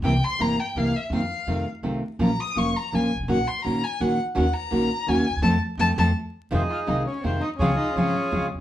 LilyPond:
<<
  \new Staff \with { instrumentName = "Violin" } { \time 3/4 \key f \phrygian \tempo 4 = 167 g''8 c'''8 bes''8 g''8 f''8 e''8 | f''4. r4. | bes''8 ees'''8 des'''8 bes''8 aes''8 r8 | ges''8 c'''8 bes''8 aes''8 ges''8 r8 |
ges''8 bes''4. aes''4 | a''8 r8 a''8 a''8 r4 | \key f \minor c'8 f'8 ees'8 des'8 c'8 ees'8 | des'8 ees'8 des'4. r8 | }
  \new Staff \with { instrumentName = "Bandoneon" } { \time 3/4 \key f \phrygian << { r2. | r2. | r2. | r2. |
r2. | r2. | \key f \minor c''8 f''8 ees''8 des''8 c''8 ees''8 | des''8 ees''8 des''4. r8 | } \\ { r2. | r2. | r2. | r2. |
r2. | r2. | <ees' aes'>4. r4. | <f' aes'>4 <f' aes'>4. r8 | } >> }
  \new Staff \with { instrumentName = "Nylon-string guitar" } { \time 3/4 \key f \phrygian <c e bes c' e'>16 r8. <c e bes c' e'>8 r8 <c e bes c' e'>8 r8 | <ees bes c' f'>16 r8. <c ees a c' f'>8 r8 <c ees a c' f'>8 r8 | <f bes des' f'>16 r8. <f bes des' f'>8 r8 <f bes des' f'>8 r8 | <ees bes des' ges'>16 r8. <ees bes des' ges'>8 r8 <ees bes des' ges'>8 r8 |
<ees bes des' ges'>16 r8. <ees bes des' ges'>8 r8 <ees bes des' ges'>8 r8 | <f a c'>8 r8 <f a c'>8 <f a c'>8 r4 | \key f \minor <c ees aes c' f'>16 r8. <c ees aes c' f'>8 r8 <c ees aes c' f'>8 r8 | <des f aes c' f'>16 r8. <des f aes c' f'>8 r8 <des f aes c' f'>8 r8 | }
  \new Staff \with { instrumentName = "Upright bass" } { \clef bass \time 3/4 \key f \phrygian c,16. r8 r32 g,,16. r8 r32 c,16. r8 r32 | f,16. r8 r32 f,16. r8 r32 c,16. r8 r32 | bes,,16. r8 r32 f,,16. r8 r32 bes,,16. r16 g,,32 aes,,32 a,,32 | bes,,16. r8 r32 bes,,16. r8 r32 bes,,16. r8 r32 |
ees,16. r8 r32 bes,,16. r8 r32 ees,16. r16 d,32 ees,32 e,32 | f,16. r8 r32 f,16. r32 f,16. r4 r32 | \key f \minor f,16. r8 r32 c,16. r8 r32 f,16. r8 r32 | des,16. r8 r32 aes,,16. r8 r32 des,16. r16 bes,,32 r16 | }
>>